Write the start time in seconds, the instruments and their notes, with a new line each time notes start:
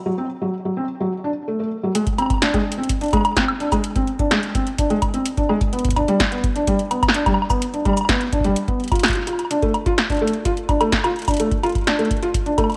0.06 felt piano F#3
0.18 felt piano C4
0.41 felt piano F#3
0.65 felt piano F#3
0.77 felt piano C4
1.00 felt piano F#3
1.24 felt piano D4
1.48 felt piano A3
1.59 felt piano A3
1.83 felt piano F#3
1.95 felt piano G#3, closed hi-hat
2.07 kick, closed hi-hat
2.18 felt piano C4, closed hi-hat, high woodblock
2.22 high woodblock
2.26 closed hi-hat, high woodblock
2.30 kick, high woodblock
2.34 high woodblock
2.38 snare, closed hi-hat, high woodblock
2.42 felt piano D4
2.54 felt piano G#3, kick, closed hi-hat
2.72 closed hi-hat
2.78 felt piano C4
2.83 closed hi-hat
2.89 kick, closed hi-hat
3.01 felt piano D4, closed hi-hat
3.04 closed hi-hat
3.06 closed hi-hat
3.08 closed hi-hat
3.11 kick, closed hi-hat
3.13 felt piano G#3, closed hi-hat, high woodblock
3.17 high woodblock
3.21 closed hi-hat, high woodblock
3.25 high woodblock
3.33 kick, snare, closed hi-hat, high woodblock
3.37 felt piano C4
3.48 closed hi-hat, high woodblock
3.60 felt piano D4, closed hi-hat
3.72 felt piano G#3, kick, closed hi-hat, cabasa, high woodblock
3.84 closed hi-hat
3.96 felt piano C4, kick, closed hi-hat
4.07 closed hi-hat
4.19 felt piano D4, kick, closed hi-hat
4.31 felt piano G#3, snare, closed hi-hat
4.43 closed hi-hat
4.55 felt piano C4, kick, closed hi-hat
4.66 closed hi-hat
4.78 felt piano D4, kick, closed hi-hat
4.90 felt piano G#3, closed hi-hat
5.02 kick, closed hi-hat, high woodblock
5.14 felt piano C4, closed hi-hat
5.25 closed hi-hat
5.37 felt piano D4, kick, closed hi-hat
5.49 felt piano G#3, high woodblock
5.61 kick, closed hi-hat
5.73 felt piano B3, closed hi-hat
5.79 closed hi-hat
5.85 kick, closed hi-hat
5.89 kick, closed hi-hat
5.93 felt piano D4, kick, closed hi-hat, high woodblock
5.97 kick
6.00 kick
6.04 felt piano G3, kick, closed hi-hat
6.20 kick, snare, closed hi-hat
6.32 felt piano B3, closed hi-hat
6.44 kick, closed hi-hat
6.56 felt piano D4, closed hi-hat
6.67 felt piano G3, kick, closed hi-hat
6.79 closed hi-hat
6.91 felt piano B3, closed hi-hat, high woodblock
7.03 kick, closed hi-hat, high woodblock
7.09 snare
7.15 felt piano D4, closed hi-hat
7.26 felt piano G3, kick, closed hi-hat, high woodblock
7.34 high woodblock
7.42 high woodblock
7.50 felt piano B3, kick, cabasa, high woodblock
7.62 closed hi-hat
7.74 felt piano D4, closed hi-hat
7.85 felt piano G3, kick, closed hi-hat, high woodblock
7.89 high woodblock
7.93 closed hi-hat, cabasa, high woodblock
7.97 high woodblock
8.01 high woodblock
8.05 snare, closed hi-hat, high woodblock
8.09 felt piano B3, kick
8.21 closed hi-hat
8.33 felt piano D4, kick, closed hi-hat
8.41 felt piano G3, kick, closed hi-hat
8.48 kick
8.56 closed hi-hat
8.68 felt piano B3, kick, closed hi-hat
8.80 closed hi-hat
8.84 closed hi-hat
8.88 kick, closed hi-hat
8.92 felt piano F4, closed hi-hat, high woodblock
8.96 closed hi-hat
9.00 snare, closed hi-hat
9.04 felt piano F4, closed hi-hat
9.06 closed hi-hat
9.08 kick, closed hi-hat
9.11 closed hi-hat
9.13 closed hi-hat
9.15 felt piano F4, closed hi-hat
9.27 felt piano F4, closed hi-hat, high woodblock
9.33 high woodblock
9.39 closed hi-hat, high woodblock
9.45 high woodblock
9.51 felt piano D4, closed hi-hat
9.63 felt piano A3, kick, closed hi-hat
9.74 closed hi-hat, high woodblock
9.86 felt piano F4, kick, closed hi-hat
9.98 snare, closed hi-hat
10.10 felt piano D4, kick, closed hi-hat
10.12 closed hi-hat
10.15 closed hi-hat
10.17 closed hi-hat
10.19 felt piano A3, closed hi-hat
10.27 closed hi-hat
10.33 closed hi-hat
10.45 felt piano F4, kick, closed hi-hat
10.57 closed hi-hat
10.69 felt piano D4, kick, closed hi-hat, high woodblock
10.81 felt piano A3, closed hi-hat, high woodblock
10.92 kick, snare, closed hi-hat
11.04 felt piano F4, closed hi-hat, high woodblock
11.16 closed hi-hat
11.19 closed hi-hat
11.22 closed hi-hat
11.25 kick, closed hi-hat
11.28 felt piano D4, closed hi-hat, cabasa, high woodblock
11.31 closed hi-hat
11.34 closed hi-hat
11.37 closed hi-hat
11.40 felt piano A3, closed hi-hat
11.52 kick, closed hi-hat
11.63 felt piano F4, closed hi-hat, high woodblock
11.66 closed hi-hat
11.69 closed hi-hat
11.72 kick, closed hi-hat
11.75 closed hi-hat
11.78 closed hi-hat
11.81 closed hi-hat
11.84 felt piano D4, snare, closed hi-hat
11.87 closed hi-hat
11.99 felt piano A3, closed hi-hat
12.05 closed hi-hat
12.11 kick, closed hi-hat
12.17 closed hi-hat
12.22 felt piano F4, closed hi-hat
12.34 kick, closed hi-hat
12.46 felt piano D4, closed hi-hat
12.58 felt piano A3, kick, closed hi-hat, high woodblock
12.64 high woodblock
12.70 closed hi-hat, high woodblock
12.72 closed hi-hat